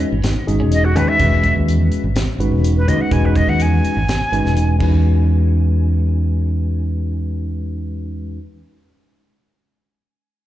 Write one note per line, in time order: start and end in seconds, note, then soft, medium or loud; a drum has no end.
0.00 0.14 G#3 medium
0.00 0.14 C#4 medium
0.00 0.14 D#4 medium
0.00 0.14 F#4 medium
0.00 0.14 B4 medium
0.00 muted fingered electric bass stroke soft
0.12 0.22 G#1 medium
0.24 0.34 G#1 medium
0.24 0.39 D#4 medium
0.24 snare medium
0.24 closed hi-hat medium
0.36 muted fingered electric bass stroke soft
0.47 0.58 G#1 medium
0.47 0.91 G#3 medium
0.47 0.91 C#4 medium
0.47 0.91 D#4 medium
0.47 0.91 F#4 medium
0.47 0.91 G#4 medium
0.47 closed hi-hat soft
0.60 0.97 E1 medium
0.60 0.75 C#4 medium
0.72 0.86 D#5 medium
0.72 closed hi-hat medium
0.85 0.98 F#4 medium
0.95 1.06 D#2 medium
0.95 1.17 G#3 medium
0.95 1.17 C#4 medium
0.95 1.11 C#4 medium
0.95 1.17 D#4 medium
0.95 1.17 F#4 medium
0.95 1.17 B4 medium
0.95 1.10 B4 medium
0.95 closed hi-hat soft
1.08 1.56 E5 medium
1.19 1.50 E1 medium
1.19 2.06 D#3 medium
1.19 2.06 G#3 medium
1.19 2.06 C#4 medium
1.19 2.07 F#4 medium
1.19 2.07 B4 medium
1.19 kick medium
1.19 closed hi-hat medium
1.44 kick medium
1.44 closed hi-hat soft
1.56 1.69 D#2 medium
1.68 1.88 E2 medium
1.68 closed hi-hat medium
1.92 muted fingered electric bass stroke soft
1.92 closed hi-hat medium
2.04 2.14 G#1 medium
2.16 2.26 G#1 medium
2.16 snare medium
2.16 closed hi-hat medium
2.27 muted fingered electric bass stroke soft
2.38 2.49 G#1 medium
2.38 2.83 G#3 medium
2.38 2.83 C#4 medium
2.38 2.83 D#4 medium
2.38 2.83 F#4 medium
2.38 2.83 B4 medium
2.38 closed hi-hat soft
2.52 2.89 E1 medium
2.64 closed hi-hat medium
2.77 2.90 B4 medium
2.87 2.98 D#2 medium
2.87 3.09 G#3 medium
2.87 3.09 C#4 medium
2.87 3.09 D#4 medium
2.87 3.10 F#4 medium
2.87 3.09 B4 medium
2.87 3.03 D#5 medium
2.87 closed hi-hat medium
3.01 3.14 F#5 medium
3.11 3.42 E1 medium
3.11 3.98 G#3 medium
3.11 3.98 C#4 medium
3.11 3.99 D#4 medium
3.11 3.98 F#4 medium
3.11 3.99 B4 medium
3.11 3.27 G#5 medium
3.11 kick medium
3.11 closed hi-hat medium
3.26 3.38 B4 medium
3.36 3.51 D#5 medium
3.36 kick medium
3.36 closed hi-hat soft
3.48 3.60 D#2 medium
3.48 3.64 F#5 medium
3.60 3.80 E2 medium
3.60 4.93 G#5 medium
3.60 closed hi-hat medium
3.85 muted fingered electric bass stroke soft
3.85 closed hi-hat soft
3.97 4.06 G#1 medium
4.08 4.19 G#1 medium
4.08 snare medium
4.08 closed hi-hat medium
4.21 muted fingered electric bass stroke soft
4.32 4.42 G#1 medium
4.32 4.76 G#3 medium
4.32 4.76 C#4 medium
4.32 4.76 D#4 medium
4.32 4.75 F#4 medium
4.32 4.76 B4 medium
4.32 closed hi-hat soft
4.45 4.80 E1 medium
4.45 snare soft
4.57 closed hi-hat medium
4.78 8.38 E2 medium
4.78 8.36 G#3 medium
4.78 8.37 C#4 medium
4.78 8.38 D#4 medium
4.78 8.39 F#4 medium
4.78 kick medium
4.78 crash medium
4.82 8.40 B4 medium